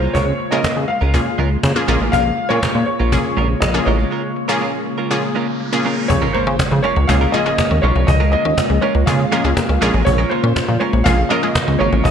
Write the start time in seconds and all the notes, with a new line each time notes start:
Already playing: C#3 G#3 A#3 C#4 F4 G#4 C5
0.02 G#3 C#4 F4 A#4, cajon slap
0.13 C#2 G#3 C#4 F4 A#4 C#5, cajon bass
0.27 muted clean electric guitar stroke, cajon slap
0.39 muted clean electric guitar stroke
0.51 C#3 G#3 A#3 C#4 F4 A#4 D#5, cajon slap
0.64 C#3 G#3 C#4 F4 A#4, cajon bass, cajon slap
0.76 C#3, muted clean electric guitar stroke, cajon slap
0.88 F5, muted clean electric guitar stroke
1.01 C#2 G#3 C#4 F4 A#4, cajon slap
1.14 A#3 C#4 F4 G#4, cajon bass
1.26 muted clean electric guitar stroke, cajon slap
1.38 C#2 G#3 C#4 F4 A#4
1.51 muted clean electric guitar stroke, cajon slap
1.63 C#3, muted clean electric guitar stroke, cajon bass, cajon slap
1.75 A#3 C#4 F4 G#4, muted clean electric guitar stroke, cajon slap
1.88 A#1 G#3 A#3 C#4 F4 G#4 A#4
2.00 A1 G#3 C#4 F4 A#4, cajon slap
2.12 A#1 G#3 C#4 F4 A#4 F5, cajon bass
2.25 muted clean electric guitar stroke, cajon slap
2.38 muted clean electric guitar stroke, cajon slap
2.49 A#2 G#3 A#3 C#4 F4 G#4 A#4 C#5, cajon slap
2.62 A#2 G#3 C#4 F4 A#4, cajon bass, cajon slap
2.75 A#2, muted clean electric guitar stroke, cajon slap
2.86 C#5, muted clean electric guitar stroke, cajon slap
3.00 A#1 G#3 C#4 F4 A#4, cajon slap
3.12 A#3 C#4 F4 G#4, cajon bass
3.24 muted clean electric guitar stroke, cajon slap
3.37 A#1 G#3 C#4 F4 A#4, cajon slap
3.49 muted clean electric guitar stroke, cajon slap
3.60 A#1 D#5, muted clean electric guitar stroke, cajon bass, cajon slap
3.74 A#3 C#4 F4 G#4, muted clean electric guitar stroke, cajon slap
3.85 A1 G#3 C#4 F4 A#4 C#5, cajon slap
3.98 G#3 C#4 F4 A#4, cajon slap
4.11 G#3 C#4 F4 A#4, riser
4.23 muted clean electric guitar stroke
4.36 muted clean electric guitar stroke
4.48 G#3 A#3 C#4 F4 G#4 A#4
4.60 G#3 C#4 F4 A#4
4.73 muted clean electric guitar stroke
4.85 muted clean electric guitar stroke
4.98 G#3 C#4 F4 A#4
5.11 A#3 C#4 F4 G#4
5.23 muted clean electric guitar stroke
5.35 G#3 C#4 F4 A#4
5.48 muted clean electric guitar stroke
5.60 muted clean electric guitar stroke
5.72 A#3 C#4 F4 G#4, muted clean electric guitar stroke
5.85 G#3 C#4 F4 A#4
5.97 G#3 C#4 F4 A#4
6.08 C#2 C#3 F3 G#3 A#3 F4 C#5, cajon bass, impact
6.22 G#3 C#4 F4 A#4, cajon slap
6.33 G#3 A#3 C#4 F4 A#4 C5, cajon slap
6.47 C#3 C#4, muted clean electric guitar stroke, cajon slap
6.59 C#3 F4, muted clean electric guitar stroke, cajon bass, cajon slap
6.71 C#3 F3, muted clean electric guitar stroke, cajon slap
6.83 G#3 C#4 F4 A#4 C#5, cajon slap
6.96 C#2 A#3, muted clean electric guitar stroke, cajon slap
7.07 C#2 G#3 A#3 C#4 F4 G#4 F5, cajon bass
7.21 G#3 C#4 F4 A#4, cajon slap
7.32 F3 G#3 A#3 C#4 F4 G#4 D#5, muted clean electric guitar stroke, cajon slap
7.46 G#3 A#3 C#4 F4 G#4, muted clean electric guitar stroke, cajon slap
7.58 A#3, muted clean electric guitar stroke, cajon bass, cajon slap
7.71 D#2 C#4, muted clean electric guitar stroke, cajon slap
7.82 B1 G#3 C#4 F4 A#4 C#5, cajon slap
7.95 C2 F3 G#3 C#4 F4 A#4, cajon slap
8.07 C#2 F3 D#5, muted clean electric guitar stroke, cajon bass
8.20 G#3 C#4 F4 A#4, cajon slap
8.32 G#3 A#3 C#4 F4 A#4 D#5, cajon slap
8.45 D#2 C#4, muted clean electric guitar stroke, cajon slap
8.57 F4, muted clean electric guitar stroke, cajon bass, cajon slap
8.70 C#2 F3, muted clean electric guitar stroke, cajon slap
8.81 G#3 C#4 F4 A#4 C#5, cajon slap
8.95 C#2 A#3, muted clean electric guitar stroke, cajon slap
9.06 C#3 G#3 A#3 C#4 F4 G#4 F5, cajon bass
9.19 muted clean electric guitar stroke, cajon slap
9.32 F3 G#3 A#3 C#4 F4 G#4 A#4, cajon slap
9.44 C#2 G#3 A#3 C#4 F4 G#4, muted clean electric guitar stroke, cajon slap
9.56 A#3, muted clean electric guitar stroke, cajon bass, cajon slap
9.69 C#2 C#4, muted clean electric guitar stroke, cajon slap
9.81 A#1 G#3 A#3 C#4 F4 G#4 A#4, cajon slap
9.93 A1 F3 G#3 C#4 F4 A#4, cajon slap
10.05 A#1 F3 C#5, cajon bass
10.18 G#3 C#4 F4 A#4, cajon slap
10.30 G#3 A#3 C#4 F4 A#4 C5, cajon slap
10.43 A#2 C#4, muted clean electric guitar stroke, cajon slap
10.56 A#2 F4, muted clean electric guitar stroke, cajon bass, cajon slap
10.68 A#2 F3, muted clean electric guitar stroke, cajon slap
10.80 G#3 C#4 F4 A#4 C#5, cajon slap
10.93 A#1 A#3, muted clean electric guitar stroke, cajon slap
11.04 A#1 G#3 A#3 C#4 F4 G#4 F5, cajon bass
11.18 muted clean electric guitar stroke, cajon slap
11.29 F3 G#3 A#3 C#4 F4 A#4 D#5, cajon slap
11.43 G#3 A#3 C#4 F4 G#4, muted clean electric guitar stroke, cajon slap
11.55 A#3, muted clean electric guitar stroke, cajon bass, cajon slap
11.67 C#2 C#4, muted clean electric guitar stroke, cajon slap
11.79 G#1 G#3 C#4 F4 A#4 C#5, cajon slap
11.92 A1 F3 G#3 C#4 F4 A#4, cajon slap
12.04 A#1 F3 D#5, muted clean electric guitar stroke, cajon bass